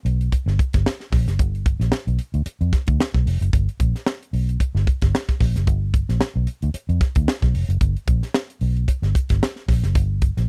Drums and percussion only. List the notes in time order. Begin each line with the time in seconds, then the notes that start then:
0.06 closed hi-hat
0.21 closed hi-hat
0.32 kick, closed hi-hat
0.48 snare
0.59 kick, closed hi-hat
0.73 kick, snare, closed hi-hat
0.86 snare
1.00 snare
1.12 kick, snare, open hi-hat
1.28 snare, closed hi-hat
1.39 kick, closed hi-hat
1.55 closed hi-hat
1.66 kick, closed hi-hat
1.81 snare, closed hi-hat
1.92 snare
2.08 closed hi-hat
2.19 closed hi-hat
2.34 closed hi-hat
2.46 closed hi-hat
2.61 closed hi-hat
2.73 kick, snare, closed hi-hat
2.87 kick, closed hi-hat
3.00 snare
3.14 kick, snare
3.27 open hi-hat
3.42 closed hi-hat
3.53 kick, closed hi-hat
3.69 closed hi-hat
3.80 kick, closed hi-hat
3.96 snare, closed hi-hat
4.06 snare
4.23 closed hi-hat
4.33 open hi-hat
4.49 closed hi-hat
4.60 kick, closed hi-hat
4.76 snare
4.87 kick, closed hi-hat
5.02 kick, snare, closed hi-hat
5.15 snare
5.28 kick, snare, closed hi-hat
5.40 kick, snare, open hi-hat
5.56 snare, closed hi-hat
5.67 kick, closed hi-hat
5.94 kick, closed hi-hat
6.09 snare, closed hi-hat
6.21 snare
6.47 closed hi-hat
6.62 closed hi-hat
6.74 closed hi-hat
6.89 closed hi-hat
7.01 kick, snare, closed hi-hat
7.15 kick, closed hi-hat
7.28 snare
7.42 kick, snare, closed hi-hat
7.55 open hi-hat
7.70 closed hi-hat
7.81 kick, closed hi-hat
7.97 closed hi-hat
8.08 kick, closed hi-hat
8.23 snare, closed hi-hat
8.34 snare
8.50 closed hi-hat
8.61 open hi-hat
8.77 closed hi-hat
8.88 kick, closed hi-hat
9.03 snare, closed hi-hat
9.15 kick, closed hi-hat
9.29 kick, snare, closed hi-hat
9.43 snare
9.56 snare
9.68 kick, snare, open hi-hat
9.84 snare, closed hi-hat
9.95 kick, closed hi-hat
10.22 kick, closed hi-hat
10.37 snare, closed hi-hat